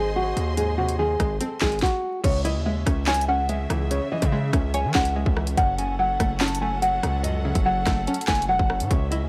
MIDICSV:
0, 0, Header, 1, 6, 480
1, 0, Start_track
1, 0, Key_signature, 4, "minor"
1, 0, Tempo, 416667
1, 661, Time_signature, 4, 2, 24, 8
1, 10701, End_track
2, 0, Start_track
2, 0, Title_t, "Nylon-string guitar"
2, 0, Program_c, 0, 24
2, 0, Note_on_c, 0, 68, 74
2, 154, Note_off_c, 0, 68, 0
2, 184, Note_on_c, 0, 66, 82
2, 634, Note_off_c, 0, 66, 0
2, 661, Note_on_c, 0, 68, 87
2, 873, Note_off_c, 0, 68, 0
2, 895, Note_on_c, 0, 66, 80
2, 1109, Note_off_c, 0, 66, 0
2, 1141, Note_on_c, 0, 68, 87
2, 1592, Note_off_c, 0, 68, 0
2, 1620, Note_on_c, 0, 69, 78
2, 1832, Note_off_c, 0, 69, 0
2, 1864, Note_on_c, 0, 68, 74
2, 2074, Note_off_c, 0, 68, 0
2, 2104, Note_on_c, 0, 66, 83
2, 2554, Note_off_c, 0, 66, 0
2, 2584, Note_on_c, 0, 73, 80
2, 2794, Note_off_c, 0, 73, 0
2, 2819, Note_on_c, 0, 75, 81
2, 3031, Note_off_c, 0, 75, 0
2, 3063, Note_on_c, 0, 76, 78
2, 3513, Note_off_c, 0, 76, 0
2, 3542, Note_on_c, 0, 80, 91
2, 3753, Note_off_c, 0, 80, 0
2, 3782, Note_on_c, 0, 78, 79
2, 3993, Note_off_c, 0, 78, 0
2, 4022, Note_on_c, 0, 76, 91
2, 4473, Note_off_c, 0, 76, 0
2, 4501, Note_on_c, 0, 73, 89
2, 4712, Note_off_c, 0, 73, 0
2, 4742, Note_on_c, 0, 75, 91
2, 4953, Note_off_c, 0, 75, 0
2, 4978, Note_on_c, 0, 76, 90
2, 5430, Note_off_c, 0, 76, 0
2, 5461, Note_on_c, 0, 80, 92
2, 5672, Note_off_c, 0, 80, 0
2, 5702, Note_on_c, 0, 78, 89
2, 5913, Note_off_c, 0, 78, 0
2, 5948, Note_on_c, 0, 76, 76
2, 6396, Note_off_c, 0, 76, 0
2, 6419, Note_on_c, 0, 78, 91
2, 6631, Note_off_c, 0, 78, 0
2, 6664, Note_on_c, 0, 80, 76
2, 6874, Note_off_c, 0, 80, 0
2, 6903, Note_on_c, 0, 78, 91
2, 7353, Note_off_c, 0, 78, 0
2, 7378, Note_on_c, 0, 81, 88
2, 7590, Note_off_c, 0, 81, 0
2, 7620, Note_on_c, 0, 80, 79
2, 7832, Note_off_c, 0, 80, 0
2, 7858, Note_on_c, 0, 78, 79
2, 8311, Note_off_c, 0, 78, 0
2, 8330, Note_on_c, 0, 75, 91
2, 8546, Note_off_c, 0, 75, 0
2, 8580, Note_on_c, 0, 76, 82
2, 8792, Note_off_c, 0, 76, 0
2, 8818, Note_on_c, 0, 78, 92
2, 9271, Note_off_c, 0, 78, 0
2, 9301, Note_on_c, 0, 81, 76
2, 9512, Note_off_c, 0, 81, 0
2, 9535, Note_on_c, 0, 80, 86
2, 9749, Note_off_c, 0, 80, 0
2, 9780, Note_on_c, 0, 78, 87
2, 10231, Note_off_c, 0, 78, 0
2, 10259, Note_on_c, 0, 73, 84
2, 10471, Note_off_c, 0, 73, 0
2, 10493, Note_on_c, 0, 75, 80
2, 10701, Note_off_c, 0, 75, 0
2, 10701, End_track
3, 0, Start_track
3, 0, Title_t, "String section"
3, 0, Program_c, 1, 48
3, 0, Note_on_c, 1, 68, 82
3, 0, Note_on_c, 1, 72, 76
3, 0, Note_on_c, 1, 75, 76
3, 0, Note_on_c, 1, 84, 89
3, 2068, Note_off_c, 1, 68, 0
3, 2068, Note_off_c, 1, 72, 0
3, 2068, Note_off_c, 1, 75, 0
3, 2068, Note_off_c, 1, 84, 0
3, 2579, Note_on_c, 1, 49, 83
3, 2579, Note_on_c, 1, 68, 78
3, 2580, Note_on_c, 1, 61, 76
3, 2580, Note_on_c, 1, 76, 90
3, 6382, Note_off_c, 1, 49, 0
3, 6382, Note_off_c, 1, 68, 0
3, 6382, Note_off_c, 1, 76, 0
3, 6421, Note_on_c, 1, 69, 78
3, 6422, Note_on_c, 1, 54, 83
3, 6422, Note_on_c, 1, 78, 90
3, 10215, Note_off_c, 1, 61, 0
3, 10223, Note_off_c, 1, 54, 0
3, 10223, Note_off_c, 1, 69, 0
3, 10223, Note_off_c, 1, 78, 0
3, 10262, Note_on_c, 1, 49, 83
3, 10262, Note_on_c, 1, 61, 78
3, 10262, Note_on_c, 1, 68, 77
3, 10262, Note_on_c, 1, 76, 90
3, 10701, Note_off_c, 1, 49, 0
3, 10701, Note_off_c, 1, 61, 0
3, 10701, Note_off_c, 1, 68, 0
3, 10701, Note_off_c, 1, 76, 0
3, 10701, End_track
4, 0, Start_track
4, 0, Title_t, "Synth pluck"
4, 0, Program_c, 2, 84
4, 659, Note_on_c, 2, 44, 89
4, 906, Note_on_c, 2, 48, 85
4, 1142, Note_on_c, 2, 51, 83
4, 1385, Note_on_c, 2, 56, 83
4, 1620, Note_on_c, 2, 60, 96
4, 1847, Note_off_c, 2, 56, 0
4, 1860, Note_off_c, 2, 44, 0
4, 1861, Note_on_c, 2, 56, 92
4, 2103, Note_off_c, 2, 48, 0
4, 2341, Note_off_c, 2, 51, 0
4, 2575, Note_on_c, 2, 49, 94
4, 2580, Note_off_c, 2, 60, 0
4, 2581, Note_off_c, 2, 56, 0
4, 2819, Note_on_c, 2, 64, 82
4, 3062, Note_on_c, 2, 56, 92
4, 3298, Note_on_c, 2, 61, 86
4, 3544, Note_on_c, 2, 73, 98
4, 3773, Note_off_c, 2, 61, 0
4, 3778, Note_off_c, 2, 49, 0
4, 3787, Note_on_c, 2, 61, 82
4, 4009, Note_off_c, 2, 56, 0
4, 4020, Note_off_c, 2, 64, 0
4, 4023, Note_on_c, 2, 56, 93
4, 4267, Note_on_c, 2, 52, 89
4, 4501, Note_on_c, 2, 49, 97
4, 4731, Note_off_c, 2, 52, 0
4, 4743, Note_off_c, 2, 73, 0
4, 4745, Note_on_c, 2, 52, 83
4, 4964, Note_off_c, 2, 56, 0
4, 4978, Note_on_c, 2, 56, 86
4, 4984, Note_off_c, 2, 61, 0
4, 5217, Note_on_c, 2, 61, 89
4, 5462, Note_on_c, 2, 73, 105
4, 5684, Note_off_c, 2, 61, 0
4, 5697, Note_on_c, 2, 61, 87
4, 5701, Note_off_c, 2, 49, 0
4, 5929, Note_off_c, 2, 56, 0
4, 5943, Note_off_c, 2, 52, 0
4, 5943, Note_on_c, 2, 56, 85
4, 6180, Note_on_c, 2, 52, 77
4, 6419, Note_off_c, 2, 61, 0
4, 6421, Note_off_c, 2, 52, 0
4, 6422, Note_off_c, 2, 56, 0
4, 6422, Note_off_c, 2, 73, 0
4, 6427, Note_on_c, 2, 42, 112
4, 6662, Note_on_c, 2, 49, 81
4, 6900, Note_on_c, 2, 54, 89
4, 7146, Note_on_c, 2, 57, 84
4, 7381, Note_on_c, 2, 61, 101
4, 7612, Note_off_c, 2, 57, 0
4, 7624, Note_off_c, 2, 42, 0
4, 7626, Note_on_c, 2, 57, 84
4, 7847, Note_off_c, 2, 54, 0
4, 7861, Note_on_c, 2, 54, 87
4, 7862, Note_off_c, 2, 49, 0
4, 8101, Note_on_c, 2, 49, 87
4, 8335, Note_on_c, 2, 42, 90
4, 8569, Note_off_c, 2, 49, 0
4, 8581, Note_off_c, 2, 61, 0
4, 8583, Note_on_c, 2, 49, 88
4, 8810, Note_off_c, 2, 54, 0
4, 8823, Note_off_c, 2, 57, 0
4, 8823, Note_on_c, 2, 54, 89
4, 9062, Note_on_c, 2, 57, 90
4, 9304, Note_on_c, 2, 61, 98
4, 9525, Note_off_c, 2, 57, 0
4, 9538, Note_off_c, 2, 42, 0
4, 9539, Note_on_c, 2, 57, 95
4, 9762, Note_off_c, 2, 54, 0
4, 9775, Note_on_c, 2, 54, 97
4, 9782, Note_off_c, 2, 49, 0
4, 10017, Note_on_c, 2, 49, 79
4, 10245, Note_off_c, 2, 49, 0
4, 10258, Note_off_c, 2, 54, 0
4, 10259, Note_on_c, 2, 49, 94
4, 10260, Note_off_c, 2, 57, 0
4, 10262, Note_off_c, 2, 61, 0
4, 10502, Note_on_c, 2, 64, 78
4, 10701, Note_off_c, 2, 49, 0
4, 10701, Note_off_c, 2, 64, 0
4, 10701, End_track
5, 0, Start_track
5, 0, Title_t, "808-style bass"
5, 0, Program_c, 3, 38
5, 0, Note_on_c, 3, 32, 107
5, 383, Note_off_c, 3, 32, 0
5, 421, Note_on_c, 3, 39, 105
5, 1343, Note_off_c, 3, 39, 0
5, 1381, Note_on_c, 3, 32, 102
5, 1612, Note_off_c, 3, 32, 0
5, 1862, Note_on_c, 3, 32, 101
5, 2092, Note_off_c, 3, 32, 0
5, 2581, Note_on_c, 3, 37, 112
5, 2942, Note_on_c, 3, 39, 104
5, 2959, Note_off_c, 3, 37, 0
5, 3283, Note_off_c, 3, 39, 0
5, 3302, Note_on_c, 3, 37, 104
5, 4223, Note_off_c, 3, 37, 0
5, 4262, Note_on_c, 3, 37, 104
5, 4607, Note_off_c, 3, 37, 0
5, 4862, Note_on_c, 3, 49, 100
5, 5207, Note_off_c, 3, 49, 0
5, 5222, Note_on_c, 3, 37, 107
5, 5582, Note_on_c, 3, 52, 102
5, 5599, Note_off_c, 3, 37, 0
5, 5696, Note_off_c, 3, 52, 0
5, 5702, Note_on_c, 3, 37, 109
5, 6047, Note_off_c, 3, 37, 0
5, 6061, Note_on_c, 3, 37, 104
5, 6407, Note_off_c, 3, 37, 0
5, 6422, Note_on_c, 3, 30, 117
5, 7113, Note_off_c, 3, 30, 0
5, 7142, Note_on_c, 3, 30, 103
5, 8063, Note_off_c, 3, 30, 0
5, 8102, Note_on_c, 3, 37, 105
5, 8678, Note_off_c, 3, 37, 0
5, 8701, Note_on_c, 3, 30, 102
5, 9047, Note_off_c, 3, 30, 0
5, 9062, Note_on_c, 3, 30, 101
5, 9292, Note_off_c, 3, 30, 0
5, 9542, Note_on_c, 3, 30, 109
5, 9781, Note_on_c, 3, 28, 101
5, 9798, Note_off_c, 3, 30, 0
5, 9895, Note_off_c, 3, 28, 0
5, 9900, Note_on_c, 3, 30, 109
5, 10141, Note_on_c, 3, 45, 102
5, 10158, Note_off_c, 3, 30, 0
5, 10255, Note_off_c, 3, 45, 0
5, 10261, Note_on_c, 3, 37, 111
5, 10622, Note_on_c, 3, 39, 104
5, 10639, Note_off_c, 3, 37, 0
5, 10701, Note_off_c, 3, 39, 0
5, 10701, End_track
6, 0, Start_track
6, 0, Title_t, "Drums"
6, 424, Note_on_c, 9, 42, 73
6, 539, Note_off_c, 9, 42, 0
6, 661, Note_on_c, 9, 42, 85
6, 776, Note_off_c, 9, 42, 0
6, 1020, Note_on_c, 9, 42, 84
6, 1136, Note_off_c, 9, 42, 0
6, 1381, Note_on_c, 9, 36, 98
6, 1381, Note_on_c, 9, 37, 96
6, 1382, Note_on_c, 9, 42, 84
6, 1496, Note_off_c, 9, 36, 0
6, 1496, Note_off_c, 9, 37, 0
6, 1497, Note_off_c, 9, 42, 0
6, 1620, Note_on_c, 9, 42, 90
6, 1735, Note_off_c, 9, 42, 0
6, 1852, Note_on_c, 9, 39, 90
6, 1861, Note_on_c, 9, 38, 116
6, 1862, Note_on_c, 9, 36, 97
6, 1967, Note_off_c, 9, 39, 0
6, 1976, Note_off_c, 9, 38, 0
6, 1977, Note_off_c, 9, 36, 0
6, 1981, Note_on_c, 9, 42, 45
6, 2061, Note_off_c, 9, 42, 0
6, 2061, Note_on_c, 9, 42, 59
6, 2100, Note_on_c, 9, 38, 93
6, 2101, Note_on_c, 9, 36, 111
6, 2141, Note_off_c, 9, 42, 0
6, 2141, Note_on_c, 9, 42, 76
6, 2215, Note_off_c, 9, 38, 0
6, 2216, Note_off_c, 9, 36, 0
6, 2256, Note_off_c, 9, 42, 0
6, 2581, Note_on_c, 9, 36, 125
6, 2581, Note_on_c, 9, 42, 89
6, 2581, Note_on_c, 9, 49, 107
6, 2696, Note_off_c, 9, 42, 0
6, 2696, Note_off_c, 9, 49, 0
6, 2697, Note_off_c, 9, 36, 0
6, 2823, Note_on_c, 9, 42, 79
6, 2938, Note_off_c, 9, 42, 0
6, 3301, Note_on_c, 9, 37, 99
6, 3302, Note_on_c, 9, 36, 102
6, 3302, Note_on_c, 9, 42, 87
6, 3416, Note_off_c, 9, 37, 0
6, 3417, Note_off_c, 9, 36, 0
6, 3417, Note_off_c, 9, 42, 0
6, 3532, Note_on_c, 9, 39, 94
6, 3541, Note_on_c, 9, 38, 114
6, 3541, Note_on_c, 9, 42, 51
6, 3622, Note_off_c, 9, 42, 0
6, 3622, Note_on_c, 9, 42, 72
6, 3647, Note_off_c, 9, 39, 0
6, 3656, Note_off_c, 9, 38, 0
6, 3702, Note_off_c, 9, 42, 0
6, 3702, Note_on_c, 9, 42, 89
6, 3817, Note_off_c, 9, 42, 0
6, 4020, Note_on_c, 9, 42, 76
6, 4136, Note_off_c, 9, 42, 0
6, 4262, Note_on_c, 9, 37, 104
6, 4264, Note_on_c, 9, 42, 73
6, 4377, Note_off_c, 9, 37, 0
6, 4379, Note_off_c, 9, 42, 0
6, 4502, Note_on_c, 9, 42, 91
6, 4618, Note_off_c, 9, 42, 0
6, 4861, Note_on_c, 9, 42, 85
6, 4862, Note_on_c, 9, 36, 96
6, 4977, Note_off_c, 9, 36, 0
6, 4977, Note_off_c, 9, 42, 0
6, 5221, Note_on_c, 9, 37, 98
6, 5222, Note_on_c, 9, 36, 100
6, 5222, Note_on_c, 9, 42, 84
6, 5336, Note_off_c, 9, 37, 0
6, 5337, Note_off_c, 9, 36, 0
6, 5337, Note_off_c, 9, 42, 0
6, 5460, Note_on_c, 9, 42, 84
6, 5575, Note_off_c, 9, 42, 0
6, 5693, Note_on_c, 9, 39, 97
6, 5702, Note_on_c, 9, 36, 97
6, 5702, Note_on_c, 9, 38, 120
6, 5808, Note_off_c, 9, 39, 0
6, 5817, Note_off_c, 9, 38, 0
6, 5818, Note_off_c, 9, 36, 0
6, 5821, Note_on_c, 9, 42, 82
6, 5936, Note_off_c, 9, 42, 0
6, 6061, Note_on_c, 9, 36, 102
6, 6177, Note_off_c, 9, 36, 0
6, 6182, Note_on_c, 9, 37, 104
6, 6297, Note_off_c, 9, 37, 0
6, 6302, Note_on_c, 9, 42, 83
6, 6417, Note_off_c, 9, 42, 0
6, 6422, Note_on_c, 9, 36, 126
6, 6422, Note_on_c, 9, 42, 89
6, 6537, Note_off_c, 9, 36, 0
6, 6537, Note_off_c, 9, 42, 0
6, 6664, Note_on_c, 9, 42, 78
6, 6779, Note_off_c, 9, 42, 0
6, 7142, Note_on_c, 9, 36, 98
6, 7142, Note_on_c, 9, 37, 103
6, 7143, Note_on_c, 9, 42, 85
6, 7257, Note_off_c, 9, 36, 0
6, 7257, Note_off_c, 9, 37, 0
6, 7258, Note_off_c, 9, 42, 0
6, 7373, Note_on_c, 9, 39, 92
6, 7382, Note_on_c, 9, 42, 54
6, 7383, Note_on_c, 9, 38, 110
6, 7463, Note_off_c, 9, 42, 0
6, 7463, Note_on_c, 9, 42, 69
6, 7489, Note_off_c, 9, 39, 0
6, 7498, Note_off_c, 9, 38, 0
6, 7542, Note_off_c, 9, 42, 0
6, 7542, Note_on_c, 9, 42, 93
6, 7658, Note_off_c, 9, 42, 0
6, 7861, Note_on_c, 9, 42, 77
6, 7976, Note_off_c, 9, 42, 0
6, 8102, Note_on_c, 9, 37, 102
6, 8104, Note_on_c, 9, 42, 76
6, 8217, Note_off_c, 9, 37, 0
6, 8219, Note_off_c, 9, 42, 0
6, 8341, Note_on_c, 9, 42, 89
6, 8456, Note_off_c, 9, 42, 0
6, 8700, Note_on_c, 9, 42, 84
6, 8701, Note_on_c, 9, 36, 96
6, 8815, Note_off_c, 9, 42, 0
6, 8817, Note_off_c, 9, 36, 0
6, 9060, Note_on_c, 9, 37, 101
6, 9060, Note_on_c, 9, 38, 72
6, 9061, Note_on_c, 9, 36, 100
6, 9061, Note_on_c, 9, 42, 83
6, 9175, Note_off_c, 9, 37, 0
6, 9175, Note_off_c, 9, 38, 0
6, 9176, Note_off_c, 9, 42, 0
6, 9177, Note_off_c, 9, 36, 0
6, 9301, Note_on_c, 9, 42, 70
6, 9380, Note_off_c, 9, 42, 0
6, 9380, Note_on_c, 9, 42, 72
6, 9460, Note_off_c, 9, 42, 0
6, 9460, Note_on_c, 9, 42, 73
6, 9532, Note_on_c, 9, 39, 92
6, 9541, Note_off_c, 9, 42, 0
6, 9541, Note_on_c, 9, 38, 117
6, 9541, Note_on_c, 9, 42, 74
6, 9542, Note_on_c, 9, 36, 101
6, 9621, Note_off_c, 9, 42, 0
6, 9621, Note_on_c, 9, 42, 76
6, 9647, Note_off_c, 9, 39, 0
6, 9656, Note_off_c, 9, 38, 0
6, 9657, Note_off_c, 9, 36, 0
6, 9700, Note_off_c, 9, 42, 0
6, 9700, Note_on_c, 9, 42, 77
6, 9816, Note_off_c, 9, 42, 0
6, 9901, Note_on_c, 9, 36, 101
6, 10016, Note_off_c, 9, 36, 0
6, 10021, Note_on_c, 9, 37, 103
6, 10136, Note_off_c, 9, 37, 0
6, 10140, Note_on_c, 9, 42, 83
6, 10256, Note_off_c, 9, 42, 0
6, 10260, Note_on_c, 9, 42, 88
6, 10261, Note_on_c, 9, 36, 124
6, 10376, Note_off_c, 9, 36, 0
6, 10376, Note_off_c, 9, 42, 0
6, 10502, Note_on_c, 9, 42, 78
6, 10617, Note_off_c, 9, 42, 0
6, 10701, End_track
0, 0, End_of_file